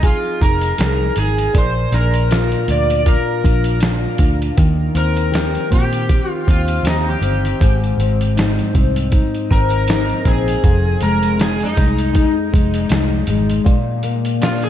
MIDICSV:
0, 0, Header, 1, 5, 480
1, 0, Start_track
1, 0, Tempo, 757576
1, 979, Time_signature, 4, 2, 24, 8
1, 9311, End_track
2, 0, Start_track
2, 0, Title_t, "Electric slide guitar"
2, 0, Program_c, 0, 29
2, 36, Note_on_c, 0, 65, 79
2, 264, Note_on_c, 0, 70, 99
2, 274, Note_off_c, 0, 65, 0
2, 716, Note_off_c, 0, 70, 0
2, 753, Note_on_c, 0, 68, 83
2, 993, Note_off_c, 0, 68, 0
2, 1000, Note_on_c, 0, 72, 95
2, 1229, Note_on_c, 0, 70, 98
2, 1236, Note_off_c, 0, 72, 0
2, 1679, Note_off_c, 0, 70, 0
2, 1720, Note_on_c, 0, 74, 106
2, 1950, Note_on_c, 0, 70, 84
2, 1957, Note_off_c, 0, 74, 0
2, 2400, Note_off_c, 0, 70, 0
2, 3154, Note_on_c, 0, 70, 99
2, 3603, Note_off_c, 0, 70, 0
2, 3635, Note_on_c, 0, 67, 101
2, 3997, Note_off_c, 0, 67, 0
2, 3997, Note_on_c, 0, 65, 101
2, 4121, Note_off_c, 0, 65, 0
2, 4123, Note_on_c, 0, 65, 90
2, 4359, Note_off_c, 0, 65, 0
2, 4362, Note_on_c, 0, 63, 75
2, 4488, Note_off_c, 0, 63, 0
2, 4493, Note_on_c, 0, 67, 78
2, 4939, Note_off_c, 0, 67, 0
2, 6031, Note_on_c, 0, 70, 112
2, 6510, Note_on_c, 0, 68, 88
2, 6521, Note_off_c, 0, 70, 0
2, 6987, Note_on_c, 0, 70, 85
2, 7001, Note_off_c, 0, 68, 0
2, 7208, Note_off_c, 0, 70, 0
2, 7231, Note_on_c, 0, 68, 84
2, 7363, Note_off_c, 0, 68, 0
2, 7371, Note_on_c, 0, 63, 76
2, 7817, Note_off_c, 0, 63, 0
2, 9147, Note_on_c, 0, 65, 80
2, 9267, Note_off_c, 0, 65, 0
2, 9273, Note_on_c, 0, 68, 84
2, 9311, Note_off_c, 0, 68, 0
2, 9311, End_track
3, 0, Start_track
3, 0, Title_t, "Steel-string acoustic guitar"
3, 0, Program_c, 1, 25
3, 0, Note_on_c, 1, 53, 81
3, 0, Note_on_c, 1, 60, 57
3, 0, Note_on_c, 1, 63, 53
3, 20, Note_on_c, 1, 68, 64
3, 250, Note_off_c, 1, 63, 0
3, 257, Note_on_c, 1, 63, 59
3, 485, Note_off_c, 1, 68, 0
3, 492, Note_on_c, 1, 68, 66
3, 737, Note_off_c, 1, 63, 0
3, 744, Note_on_c, 1, 63, 54
3, 929, Note_off_c, 1, 60, 0
3, 974, Note_on_c, 1, 46, 80
3, 1029, Note_off_c, 1, 68, 0
3, 1035, Note_off_c, 1, 63, 0
3, 1223, Note_on_c, 1, 62, 54
3, 1277, Note_off_c, 1, 53, 0
3, 1464, Note_on_c, 1, 65, 66
3, 1697, Note_off_c, 1, 62, 0
3, 1705, Note_on_c, 1, 62, 53
3, 1931, Note_off_c, 1, 65, 0
3, 1939, Note_on_c, 1, 65, 64
3, 2171, Note_off_c, 1, 62, 0
3, 2179, Note_on_c, 1, 62, 63
3, 2414, Note_off_c, 1, 65, 0
3, 2422, Note_on_c, 1, 65, 64
3, 2653, Note_off_c, 1, 62, 0
3, 2660, Note_on_c, 1, 62, 58
3, 2894, Note_on_c, 1, 51, 83
3, 2898, Note_off_c, 1, 46, 0
3, 2954, Note_off_c, 1, 62, 0
3, 2955, Note_off_c, 1, 65, 0
3, 3130, Note_on_c, 1, 60, 55
3, 3369, Note_on_c, 1, 67, 69
3, 3609, Note_off_c, 1, 60, 0
3, 3612, Note_on_c, 1, 60, 55
3, 3858, Note_off_c, 1, 67, 0
3, 3860, Note_on_c, 1, 67, 66
3, 4096, Note_off_c, 1, 60, 0
3, 4098, Note_on_c, 1, 60, 59
3, 4338, Note_off_c, 1, 67, 0
3, 4341, Note_on_c, 1, 67, 64
3, 4573, Note_off_c, 1, 60, 0
3, 4576, Note_on_c, 1, 60, 60
3, 4816, Note_on_c, 1, 44, 84
3, 5069, Note_off_c, 1, 60, 0
3, 5072, Note_on_c, 1, 60, 54
3, 5112, Note_off_c, 1, 51, 0
3, 5296, Note_off_c, 1, 67, 0
3, 5298, Note_on_c, 1, 63, 66
3, 5534, Note_off_c, 1, 60, 0
3, 5536, Note_on_c, 1, 60, 60
3, 5778, Note_off_c, 1, 63, 0
3, 5780, Note_on_c, 1, 63, 65
3, 6025, Note_off_c, 1, 60, 0
3, 6027, Note_on_c, 1, 60, 66
3, 6265, Note_off_c, 1, 63, 0
3, 6267, Note_on_c, 1, 63, 67
3, 6500, Note_off_c, 1, 60, 0
3, 6503, Note_on_c, 1, 60, 61
3, 6734, Note_off_c, 1, 44, 0
3, 6736, Note_on_c, 1, 41, 89
3, 6977, Note_off_c, 1, 60, 0
3, 6980, Note_on_c, 1, 56, 56
3, 7205, Note_off_c, 1, 63, 0
3, 7208, Note_on_c, 1, 63, 68
3, 7445, Note_off_c, 1, 56, 0
3, 7452, Note_on_c, 1, 56, 59
3, 7678, Note_off_c, 1, 63, 0
3, 7686, Note_on_c, 1, 63, 66
3, 7927, Note_off_c, 1, 56, 0
3, 7935, Note_on_c, 1, 56, 63
3, 8166, Note_off_c, 1, 63, 0
3, 8174, Note_on_c, 1, 63, 67
3, 8411, Note_off_c, 1, 56, 0
3, 8419, Note_on_c, 1, 56, 62
3, 8645, Note_on_c, 1, 46, 84
3, 8659, Note_off_c, 1, 41, 0
3, 8711, Note_off_c, 1, 63, 0
3, 8713, Note_off_c, 1, 56, 0
3, 8892, Note_on_c, 1, 58, 56
3, 9131, Note_on_c, 1, 62, 74
3, 9311, Note_off_c, 1, 46, 0
3, 9311, Note_off_c, 1, 58, 0
3, 9311, Note_off_c, 1, 62, 0
3, 9311, End_track
4, 0, Start_track
4, 0, Title_t, "Picked electric bass"
4, 0, Program_c, 2, 34
4, 0, Note_on_c, 2, 36, 81
4, 76, Note_off_c, 2, 36, 0
4, 261, Note_on_c, 2, 29, 92
4, 452, Note_off_c, 2, 29, 0
4, 502, Note_on_c, 2, 36, 83
4, 692, Note_off_c, 2, 36, 0
4, 739, Note_on_c, 2, 32, 79
4, 931, Note_off_c, 2, 32, 0
4, 980, Note_on_c, 2, 34, 94
4, 1172, Note_off_c, 2, 34, 0
4, 1219, Note_on_c, 2, 34, 95
4, 1604, Note_off_c, 2, 34, 0
4, 1700, Note_on_c, 2, 38, 88
4, 1998, Note_off_c, 2, 38, 0
4, 2182, Note_on_c, 2, 34, 96
4, 2566, Note_off_c, 2, 34, 0
4, 2655, Note_on_c, 2, 38, 80
4, 2850, Note_off_c, 2, 38, 0
4, 2902, Note_on_c, 2, 39, 99
4, 3094, Note_off_c, 2, 39, 0
4, 3136, Note_on_c, 2, 39, 92
4, 3523, Note_off_c, 2, 39, 0
4, 3621, Note_on_c, 2, 46, 97
4, 3919, Note_off_c, 2, 46, 0
4, 4105, Note_on_c, 2, 39, 93
4, 4296, Note_off_c, 2, 39, 0
4, 4329, Note_on_c, 2, 39, 94
4, 4527, Note_off_c, 2, 39, 0
4, 4571, Note_on_c, 2, 31, 81
4, 4768, Note_off_c, 2, 31, 0
4, 4820, Note_on_c, 2, 32, 109
4, 5013, Note_off_c, 2, 32, 0
4, 5053, Note_on_c, 2, 32, 97
4, 5441, Note_off_c, 2, 32, 0
4, 5544, Note_on_c, 2, 36, 93
4, 5841, Note_off_c, 2, 36, 0
4, 6025, Note_on_c, 2, 32, 82
4, 6409, Note_off_c, 2, 32, 0
4, 6497, Note_on_c, 2, 34, 79
4, 6692, Note_off_c, 2, 34, 0
4, 6739, Note_on_c, 2, 29, 103
4, 6933, Note_off_c, 2, 29, 0
4, 6980, Note_on_c, 2, 29, 93
4, 7366, Note_off_c, 2, 29, 0
4, 7460, Note_on_c, 2, 36, 84
4, 7759, Note_off_c, 2, 36, 0
4, 7943, Note_on_c, 2, 29, 96
4, 8135, Note_off_c, 2, 29, 0
4, 8175, Note_on_c, 2, 36, 88
4, 8370, Note_off_c, 2, 36, 0
4, 8411, Note_on_c, 2, 32, 79
4, 8608, Note_off_c, 2, 32, 0
4, 9311, End_track
5, 0, Start_track
5, 0, Title_t, "Drums"
5, 19, Note_on_c, 9, 36, 84
5, 19, Note_on_c, 9, 42, 81
5, 82, Note_off_c, 9, 36, 0
5, 82, Note_off_c, 9, 42, 0
5, 263, Note_on_c, 9, 36, 84
5, 270, Note_on_c, 9, 42, 67
5, 326, Note_off_c, 9, 36, 0
5, 334, Note_off_c, 9, 42, 0
5, 389, Note_on_c, 9, 42, 54
5, 452, Note_off_c, 9, 42, 0
5, 496, Note_on_c, 9, 42, 90
5, 511, Note_on_c, 9, 38, 96
5, 560, Note_off_c, 9, 42, 0
5, 574, Note_off_c, 9, 38, 0
5, 733, Note_on_c, 9, 42, 74
5, 797, Note_off_c, 9, 42, 0
5, 876, Note_on_c, 9, 42, 51
5, 940, Note_off_c, 9, 42, 0
5, 980, Note_on_c, 9, 36, 117
5, 981, Note_on_c, 9, 42, 90
5, 1044, Note_off_c, 9, 36, 0
5, 1044, Note_off_c, 9, 42, 0
5, 1219, Note_on_c, 9, 42, 68
5, 1283, Note_off_c, 9, 42, 0
5, 1354, Note_on_c, 9, 42, 51
5, 1417, Note_off_c, 9, 42, 0
5, 1462, Note_on_c, 9, 42, 68
5, 1472, Note_on_c, 9, 38, 95
5, 1526, Note_off_c, 9, 42, 0
5, 1536, Note_off_c, 9, 38, 0
5, 1595, Note_on_c, 9, 42, 36
5, 1658, Note_off_c, 9, 42, 0
5, 1698, Note_on_c, 9, 42, 67
5, 1762, Note_off_c, 9, 42, 0
5, 1838, Note_on_c, 9, 42, 56
5, 1902, Note_off_c, 9, 42, 0
5, 1939, Note_on_c, 9, 42, 84
5, 1942, Note_on_c, 9, 36, 83
5, 2003, Note_off_c, 9, 42, 0
5, 2005, Note_off_c, 9, 36, 0
5, 2185, Note_on_c, 9, 36, 83
5, 2188, Note_on_c, 9, 42, 75
5, 2248, Note_off_c, 9, 36, 0
5, 2251, Note_off_c, 9, 42, 0
5, 2307, Note_on_c, 9, 42, 59
5, 2371, Note_off_c, 9, 42, 0
5, 2411, Note_on_c, 9, 42, 90
5, 2425, Note_on_c, 9, 38, 96
5, 2474, Note_off_c, 9, 42, 0
5, 2488, Note_off_c, 9, 38, 0
5, 2650, Note_on_c, 9, 42, 78
5, 2656, Note_on_c, 9, 36, 90
5, 2714, Note_off_c, 9, 42, 0
5, 2719, Note_off_c, 9, 36, 0
5, 2799, Note_on_c, 9, 42, 50
5, 2863, Note_off_c, 9, 42, 0
5, 2899, Note_on_c, 9, 42, 87
5, 2901, Note_on_c, 9, 36, 114
5, 2962, Note_off_c, 9, 42, 0
5, 2965, Note_off_c, 9, 36, 0
5, 3137, Note_on_c, 9, 42, 64
5, 3200, Note_off_c, 9, 42, 0
5, 3273, Note_on_c, 9, 42, 52
5, 3336, Note_off_c, 9, 42, 0
5, 3381, Note_on_c, 9, 42, 74
5, 3391, Note_on_c, 9, 38, 97
5, 3445, Note_off_c, 9, 42, 0
5, 3455, Note_off_c, 9, 38, 0
5, 3516, Note_on_c, 9, 42, 36
5, 3579, Note_off_c, 9, 42, 0
5, 3623, Note_on_c, 9, 42, 69
5, 3624, Note_on_c, 9, 36, 90
5, 3636, Note_on_c, 9, 38, 33
5, 3686, Note_off_c, 9, 42, 0
5, 3687, Note_off_c, 9, 36, 0
5, 3700, Note_off_c, 9, 38, 0
5, 3755, Note_on_c, 9, 42, 56
5, 3818, Note_off_c, 9, 42, 0
5, 3861, Note_on_c, 9, 42, 78
5, 3862, Note_on_c, 9, 36, 82
5, 3924, Note_off_c, 9, 42, 0
5, 3925, Note_off_c, 9, 36, 0
5, 4106, Note_on_c, 9, 36, 84
5, 4111, Note_on_c, 9, 42, 68
5, 4169, Note_off_c, 9, 36, 0
5, 4174, Note_off_c, 9, 42, 0
5, 4231, Note_on_c, 9, 42, 59
5, 4295, Note_off_c, 9, 42, 0
5, 4339, Note_on_c, 9, 42, 96
5, 4354, Note_on_c, 9, 38, 101
5, 4402, Note_off_c, 9, 42, 0
5, 4417, Note_off_c, 9, 38, 0
5, 4578, Note_on_c, 9, 42, 71
5, 4641, Note_off_c, 9, 42, 0
5, 4720, Note_on_c, 9, 42, 52
5, 4783, Note_off_c, 9, 42, 0
5, 4823, Note_on_c, 9, 36, 123
5, 4828, Note_on_c, 9, 42, 89
5, 4886, Note_off_c, 9, 36, 0
5, 4892, Note_off_c, 9, 42, 0
5, 4965, Note_on_c, 9, 42, 36
5, 5028, Note_off_c, 9, 42, 0
5, 5067, Note_on_c, 9, 42, 64
5, 5130, Note_off_c, 9, 42, 0
5, 5201, Note_on_c, 9, 42, 55
5, 5264, Note_off_c, 9, 42, 0
5, 5306, Note_on_c, 9, 42, 71
5, 5316, Note_on_c, 9, 38, 98
5, 5369, Note_off_c, 9, 42, 0
5, 5379, Note_off_c, 9, 38, 0
5, 5441, Note_on_c, 9, 42, 33
5, 5504, Note_off_c, 9, 42, 0
5, 5543, Note_on_c, 9, 42, 73
5, 5544, Note_on_c, 9, 36, 92
5, 5606, Note_off_c, 9, 42, 0
5, 5607, Note_off_c, 9, 36, 0
5, 5678, Note_on_c, 9, 42, 58
5, 5741, Note_off_c, 9, 42, 0
5, 5777, Note_on_c, 9, 42, 84
5, 5781, Note_on_c, 9, 36, 85
5, 5841, Note_off_c, 9, 42, 0
5, 5845, Note_off_c, 9, 36, 0
5, 5921, Note_on_c, 9, 42, 31
5, 5984, Note_off_c, 9, 42, 0
5, 6026, Note_on_c, 9, 36, 86
5, 6036, Note_on_c, 9, 42, 74
5, 6089, Note_off_c, 9, 36, 0
5, 6099, Note_off_c, 9, 42, 0
5, 6148, Note_on_c, 9, 42, 54
5, 6212, Note_off_c, 9, 42, 0
5, 6258, Note_on_c, 9, 42, 85
5, 6273, Note_on_c, 9, 38, 108
5, 6322, Note_off_c, 9, 42, 0
5, 6336, Note_off_c, 9, 38, 0
5, 6396, Note_on_c, 9, 42, 33
5, 6459, Note_off_c, 9, 42, 0
5, 6497, Note_on_c, 9, 36, 88
5, 6497, Note_on_c, 9, 42, 80
5, 6560, Note_off_c, 9, 42, 0
5, 6561, Note_off_c, 9, 36, 0
5, 6640, Note_on_c, 9, 42, 56
5, 6703, Note_off_c, 9, 42, 0
5, 6740, Note_on_c, 9, 42, 89
5, 6741, Note_on_c, 9, 36, 119
5, 6803, Note_off_c, 9, 42, 0
5, 6804, Note_off_c, 9, 36, 0
5, 6973, Note_on_c, 9, 42, 62
5, 7036, Note_off_c, 9, 42, 0
5, 7113, Note_on_c, 9, 42, 54
5, 7177, Note_off_c, 9, 42, 0
5, 7220, Note_on_c, 9, 42, 71
5, 7230, Note_on_c, 9, 38, 96
5, 7283, Note_off_c, 9, 42, 0
5, 7293, Note_off_c, 9, 38, 0
5, 7352, Note_on_c, 9, 42, 34
5, 7415, Note_off_c, 9, 42, 0
5, 7458, Note_on_c, 9, 42, 72
5, 7461, Note_on_c, 9, 36, 87
5, 7472, Note_on_c, 9, 38, 33
5, 7522, Note_off_c, 9, 42, 0
5, 7524, Note_off_c, 9, 36, 0
5, 7535, Note_off_c, 9, 38, 0
5, 7593, Note_on_c, 9, 42, 57
5, 7657, Note_off_c, 9, 42, 0
5, 7696, Note_on_c, 9, 42, 82
5, 7700, Note_on_c, 9, 36, 89
5, 7760, Note_off_c, 9, 42, 0
5, 7763, Note_off_c, 9, 36, 0
5, 7943, Note_on_c, 9, 36, 88
5, 7953, Note_on_c, 9, 42, 73
5, 8006, Note_off_c, 9, 36, 0
5, 8016, Note_off_c, 9, 42, 0
5, 8071, Note_on_c, 9, 42, 55
5, 8134, Note_off_c, 9, 42, 0
5, 8170, Note_on_c, 9, 42, 94
5, 8184, Note_on_c, 9, 38, 106
5, 8233, Note_off_c, 9, 42, 0
5, 8248, Note_off_c, 9, 38, 0
5, 8408, Note_on_c, 9, 42, 83
5, 8471, Note_off_c, 9, 42, 0
5, 8551, Note_on_c, 9, 42, 57
5, 8614, Note_off_c, 9, 42, 0
5, 8656, Note_on_c, 9, 36, 127
5, 8657, Note_on_c, 9, 42, 91
5, 8719, Note_off_c, 9, 36, 0
5, 8720, Note_off_c, 9, 42, 0
5, 8889, Note_on_c, 9, 42, 66
5, 8952, Note_off_c, 9, 42, 0
5, 9028, Note_on_c, 9, 42, 57
5, 9091, Note_off_c, 9, 42, 0
5, 9134, Note_on_c, 9, 42, 72
5, 9144, Note_on_c, 9, 38, 103
5, 9198, Note_off_c, 9, 42, 0
5, 9208, Note_off_c, 9, 38, 0
5, 9264, Note_on_c, 9, 42, 35
5, 9311, Note_off_c, 9, 42, 0
5, 9311, End_track
0, 0, End_of_file